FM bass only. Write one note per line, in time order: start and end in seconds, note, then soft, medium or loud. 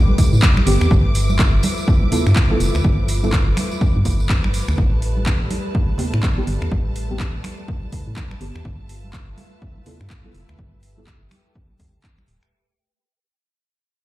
0.33 0.40 A2 medium
0.67 0.77 G1 loud
0.81 0.88 E2 medium
0.91 1.47 G1 loud
1.54 1.61 G1 loud
2.27 2.33 G2 medium
2.60 2.71 F1 loud
2.75 2.82 D2 medium
2.84 3.41 G1 medium
3.48 3.54 G1 loud
3.96 4.03 G2 loud
4.05 4.62 G1 medium
4.68 4.75 D2 medium
4.78 5.35 A1 medium
5.41 5.48 A1 loud
6.14 6.20 A2 medium
6.47 6.58 G1 loud
6.62 6.69 E2 medium
6.72 7.28 A1 medium
7.35 7.41 A1 loud
8.07 8.14 A2 medium
8.41 8.51 G1 loud
8.56 8.62 E2 medium
8.65 9.22 G1 medium
9.28 9.35 G1 loud
10.01 10.08 G2 medium
10.34 10.45 F1 loud
10.49 10.56 D2 medium
11.22 11.29 G1 loud
11.80 11.90 D2 medium
12.28 12.39 D1 medium